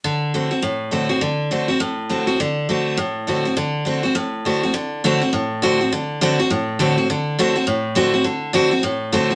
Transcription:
steel-string acoustic guitar
0.04 D3
0.34 D3 A3 C4 F#4
0.51 C4 F#4
0.62 A2
0.91 D3 A3 C4 F#4
1.09 C4 F#4
1.21 D3
1.51 D3 A3 C4 F#4
1.68 C4 F#4
1.80 A2
2.09 D3 A3 C4 F#4
2.27 C4 F#4
2.40 D3
2.69 D3 A3 C4 F#4
2.97 A2
3.27 D3 A3 C4 F#4
3.45 C4 F#4
3.57 D3
3.85 D3 A3 C4 F#4
4.03 C4 F#4
4.15 A2
4.45 D3 A3 C4 F#4
4.63 C4 F#4
4.74 D3
5.04 D3 A3 C4 F#4
5.21 C4 F#4
5.33 A2
5.62 D3 A3 C4 F#4
5.81 C4 F#4
5.92 D3
6.21 D3 A3 C4 F#4
6.39 C4 F#4
6.50 A2
6.79 D3 A3 C4 F#4
6.98 C4 F#4
7.10 D3
7.39 D3 A3 C4 F#4
7.56 C4 F#4
7.67 A2
7.95 D3 A3 C4 F#4
8.14 C4 F#4
8.24 D3
8.53 D3 A3 C4 F#4
8.71 C4 F#4
8.83 A2
9.12 D3 A3 C4 F#4
9.31 C4 F#4

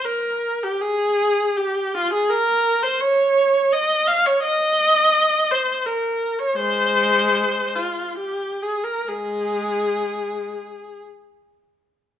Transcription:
viola
0.05 A#4
0.64 G4
0.81 G#4
1.57 G4
1.95 F4
2.13 G#4
2.30 A#4
2.83 C5
3.01 C#5
3.73 D#5
4.07 F5
4.26 C#5
4.42 D#5
5.51 C5
5.86 A#4
6.39 C#5
6.56 G#3 C5
7.76 F4
8.18 G4
8.62 G#4
8.84 A#4
9.08 G#3 G#4

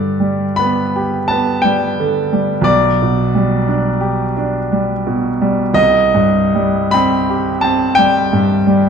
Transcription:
grand piano
Already playing: G2 D3 D5
0.20 G3
0.56 B3 B5
0.96 G4
1.28 B3 A5
1.62 G3 G5
1.99 D3
2.33 G3
2.61 B1 D5
3.02 B2
3.35 G3
3.68 D4
4.01 G4
4.37 D4
4.72 G3
5.07 B2
5.42 G3
5.74 C2 D#5
6.15 G2
6.55 G3
6.91 C4 B5
7.30 G4
7.61 C4 A5
7.95 G3 G5
8.33 G2
8.67 G3

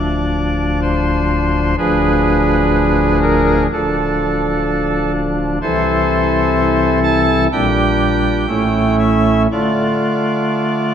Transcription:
pipe organ
Already playing: D1 D2 F3 D4 D5
0.82 C5
1.78 D1 D2 F3 D4 G#4 B4
3.22 A#4
3.72 D1 D2 F3 D4 A4
5.62 C2 C3 E3 E4 A4 C5
7.04 A5
7.52 A#1 A#2 G3 D4 G4 G5
8.48 A1 A2 A3 C#4 E4
8.99 E5
9.51 D3 A3 D4 F4 D5

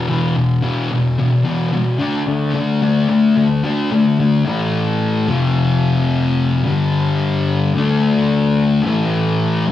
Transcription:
distorted electric guitar
0.08 E2 B2 E3
0.36 E2 B2
0.62 E2 B2 E3
0.90 E2 B2
1.18 E2 B2
1.44 E2 B2 E3
1.72 E2 B2
1.99 D3 A3 D4
2.27 D3 A3 D4
2.54 D3 A3
2.82 D3 A3 D4
3.08 D3 A3
3.36 D3 A3
3.64 D3 A3 D4
3.91 D3 A3
4.19 D3 A3
4.46 A2 E3 A3
5.27 F2 C3 F3
6.64 G2 D3 G3
7.74 D3 A3 D4
8.84 A2 E3 A3
9.67 F2

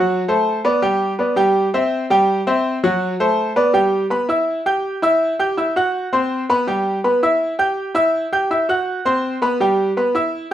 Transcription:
grand piano
Already playing: F#3 F#4 F#5
0.28 A3 A4 C5
0.65 B3 B4 D5
0.82 G3 G4 G5
1.19 B3 B4 D5
1.36 G3 G4 G5
1.74 C4 C5 E5
2.10 G3 G4 G5
2.47 C4 C5 E5
2.84 F#3 F#4 F#5
3.20 A3 A4 C5
3.56 B3 B4 D5
3.74 G3 G4 G5
4.10 B3 B4 B5
4.29 E4 E5 E6
4.66 G4 G5 G6
5.02 E4 E5 E6
5.39 G4 G5 G6
5.57 E4 E5 E6
5.76 F#4 F#5 F#6
6.13 C4 C5 C6
6.50 B3 B4 B5
6.67 G3 G4 G5
7.04 B3 B4 B5
7.23 E4 E5 E6
7.59 G4 G5 G6
7.95 E4 E5 E6
8.32 G4 G5 G6
8.51 E4 E5 E6
8.69 F#4 F#5 F#6
9.05 C4 C5 C6
9.42 B3 B4 B5
9.60 G3 G4 G5
9.97 B3 B4 B5
10.15 E4 E5 E6

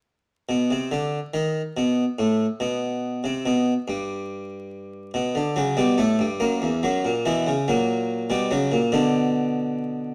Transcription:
harpsichord
0.49 B2
0.71 C3
0.91 D3
1.34 D#3
1.77 B2
2.19 A2
2.60 B2
3.24 C3
3.46 B2
3.88 G2
5.14 B2
5.35 D3
5.56 C#3 F#3
5.77 B2 G3
5.98 A2 A3
6.19 G2
6.40 F#2 A#3
6.62 E2
6.83 F#2 F#3
7.05 A#2
7.26 B2 E3
7.47 C#3
7.68 A#2 F#3
8.30 B2 G3
8.51 C#3 F#3
8.72 A#2
8.92 B2 D3

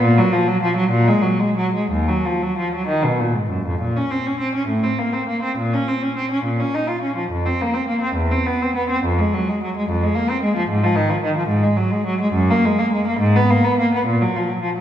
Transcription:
cello
0.01 A#2
0.18 F#3
0.33 F3
0.48 F#3
0.63 F3
0.77 F#3
0.90 A#2
1.08 G#3
1.22 F#3
1.40 G#3
1.57 F#3
1.74 G#3
1.91 D#2
2.08 F#3
2.25 F3
2.43 F#3
2.59 F3
2.76 F#3
2.88 D#3
3.04 B2
3.20 A#2
3.34 G#2
3.50 F#2
3.66 F2
3.81 A#2
3.96 C#4
4.10 C4
4.26 C#4
4.40 C4
4.55 C#4
4.68 A2
4.84 C4
4.99 A#3
5.13 C4
5.29 A#3
5.43 C4
5.58 A#2
5.74 C#4
5.88 C4
6.02 C#4
6.17 C4
6.32 C#4
6.45 A#2
6.60 C#4
6.74 D#4
6.89 F4
7.02 C#4
7.17 F3
7.31 F2
7.46 C4
7.61 A#3
7.74 C4
7.88 A#3
8.01 C4
8.16 E2
8.31 C4
8.46 B3
8.62 C4
8.76 B3
8.90 C4
9.04 F2
9.19 G#3
9.34 F#3
9.49 G#3
9.63 F#3
9.77 G#3
9.89 F2
10.03 G#3
10.15 A#3
10.29 C4
10.43 G#3
10.57 F3
10.69 G#2
10.83 F3
10.96 D#3
11.09 F3
11.24 D#3
11.37 F3
11.48 G#2
11.63 G#3
11.77 F#3
11.91 G#3
12.06 F#3
12.21 G#3
12.34 F#2
12.50 A#3
12.65 G#3
12.79 A#3
12.93 G#3
13.07 A#3
13.20 G#2
13.36 B3
13.51 A#3
13.64 B3
13.79 A#3
13.94 B3
14.06 A#2
14.21 F#3
14.36 F3
14.49 F#3
14.63 F3
14.78 F#3

